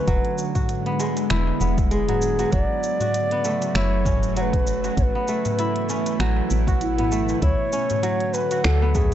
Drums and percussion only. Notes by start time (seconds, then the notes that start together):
0.08 kick, closed hi-hat, shaker
0.25 closed hi-hat
0.38 shaker
0.55 kick, closed hi-hat, darbuka ka, darbuka dum, shaker
0.69 closed hi-hat, shaker
0.86 closed hi-hat
1.00 darbuka ka, darbuka tek, shaker
1.17 closed hi-hat, darbuka ka, darbuka tek, shaker
1.30 finger snap, closed hi-hat, shaker
1.47 darbuka tek
1.61 shaker
1.78 kick, closed hi-hat, darbuka tek, shaker
1.91 closed hi-hat, shaker
2.09 closed hi-hat, darbuka dum
2.22 darbuka ka, shaker
2.39 closed hi-hat, darbuka tek, shaker
2.53 kick, closed hi-hat, shaker
2.83 shaker
3.00 closed hi-hat, darbuka dum, shaker
3.14 closed hi-hat, shaker
3.31 closed hi-hat
3.44 darbuka ka, darbuka tek, shaker
3.62 closed hi-hat, darbuka ka, darbuka tek, shaker
3.75 finger snap, closed hi-hat, shaker
4.05 kick, darbuka tek, darbuka dum, shaker
4.23 closed hi-hat, shaker
4.37 closed hi-hat, shaker
4.53 kick, closed hi-hat
4.67 shaker
4.84 darbuka tek, shaker
4.97 kick, closed hi-hat, shaker
5.28 shaker
5.45 closed hi-hat, darbuka ka, darbuka dum, shaker
5.59 closed hi-hat, shaker
5.76 closed hi-hat
5.89 darbuka ka, darbuka tek, shaker
6.06 closed hi-hat, darbuka ka, darbuka tek, shaker
6.20 finger snap, closed hi-hat, shaker
6.36 darbuka tek
6.50 shaker
6.67 kick, closed hi-hat, darbuka tek, shaker
6.81 closed hi-hat, shaker
6.98 closed hi-hat, darbuka dum
7.12 darbuka ka, shaker
7.29 darbuka tek, shaker
7.42 kick, closed hi-hat, shaker
7.73 shaker
7.90 closed hi-hat, darbuka dum, shaker
8.03 closed hi-hat, shaker
8.20 closed hi-hat
8.34 darbuka ka, darbuka tek, shaker
8.51 closed hi-hat, darbuka ka, darbuka tek, shaker
8.64 finger snap, closed hi-hat, shaker
8.95 kick, darbuka tek, darbuka dum, shaker